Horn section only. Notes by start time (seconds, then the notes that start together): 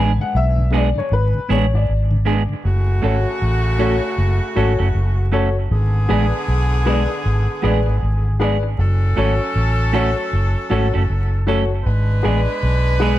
2.63 C#3 A3 F#4
5.71 D3 B3 G#4
8.77 F#3 C#4 A4
11.84 G#3 D4 B4